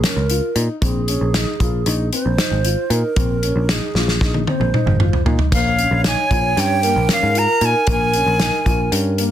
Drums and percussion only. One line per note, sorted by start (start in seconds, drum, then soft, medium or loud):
0.04 snare loud
0.04 closed hi-hat medium
0.30 closed hi-hat medium
0.56 closed hi-hat medium
0.82 kick loud
0.82 closed hi-hat medium
1.08 closed hi-hat medium
1.34 snare loud
1.34 closed hi-hat medium
1.60 kick medium
1.60 closed hi-hat medium
1.86 closed hi-hat medium
2.13 closed hi-hat medium
2.38 snare loud
2.38 closed hi-hat medium
2.65 closed hi-hat medium
2.90 closed hi-hat medium
3.16 kick loud
3.16 closed hi-hat medium
3.43 closed hi-hat medium
3.69 snare medium
3.69 closed hi-hat medium
3.95 snare medium
4.08 snare medium
4.21 kick loud
4.21 snare medium
4.34 high tom medium
4.47 high tom medium
4.61 mid tom medium
4.74 mid tom medium
4.87 mid tom medium
5.00 mid tom medium
5.13 floor tom medium
5.26 floor tom medium
5.39 floor tom medium
5.52 kick loud
5.52 closed hi-hat medium
5.52 splash medium
5.79 closed hi-hat medium
6.04 snare loud
6.04 closed hi-hat medium
6.31 kick medium
6.31 closed hi-hat medium
6.57 snare soft
6.57 closed hi-hat medium
6.83 closed hi-hat medium
7.09 snare loud
7.09 closed hi-hat medium
7.35 closed hi-hat medium
7.61 closed hi-hat medium
7.87 kick loud
7.87 closed hi-hat medium
8.13 closed hi-hat medium
8.40 snare loud
8.40 closed hi-hat medium
8.66 kick medium
8.66 closed hi-hat medium
8.92 closed hi-hat medium
9.18 closed hi-hat medium